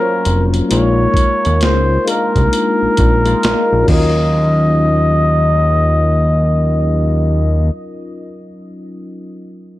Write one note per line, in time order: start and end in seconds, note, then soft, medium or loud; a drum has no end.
0.00 0.72 F#3 medium
0.00 0.70 A#3 medium
0.00 0.72 C#4 medium
0.00 0.71 F4 medium
0.00 0.45 A#4 medium
0.00 0.72 A#4 medium
0.00 0.55 C5 medium
0.25 0.62 F1 medium
0.25 closed hi-hat medium
0.54 closed hi-hat soft
0.69 1.07 A#1 loud
0.69 1.81 G#3 medium
0.69 1.82 A#3 medium
0.69 1.82 D#4 medium
0.69 1.82 F4 medium
0.69 1.83 A#4 medium
0.69 1.65 C#5 medium
0.69 closed hi-hat medium
1.14 1.26 D#2 soft
1.14 kick medium
1.14 closed hi-hat medium
1.45 1.64 D#2 medium
1.45 closed hi-hat soft
1.61 1.98 C#2 medium
1.61 2.10 C5 medium
1.61 snare medium
1.61 closed hi-hat soft
2.05 2.95 G#3 medium
2.05 2.96 A#3 medium
2.05 2.14 D4 soft
2.05 2.96 F4 medium
2.05 2.97 A#4 medium
2.05 3.89 A#4 medium
2.05 closed hi-hat medium
2.13 2.99 D#4 medium
2.36 2.49 C2 medium
2.36 kick medium
2.36 closed hi-hat soft
2.53 closed hi-hat medium
2.82 2.89 A#1 soft
2.97 3.35 A#1 medium
2.97 kick medium
2.97 closed hi-hat medium
3.25 3.87 G#3 medium
3.25 3.88 A#3 medium
3.25 3.87 D#4 medium
3.25 3.88 F4 medium
3.25 3.89 A#4 medium
3.25 closed hi-hat soft
3.43 3.55 A#1 soft
3.43 snare medium
3.43 closed hi-hat medium
3.73 3.85 A#1 medium
3.83 7.65 F#3 medium
3.83 7.67 C#4 medium
3.88 7.70 D#2 medium
3.88 7.70 D#4 medium
3.88 7.73 F4 medium
3.88 7.71 D#5 medium
3.88 kick medium
3.88 crash medium
3.94 7.75 A#4 medium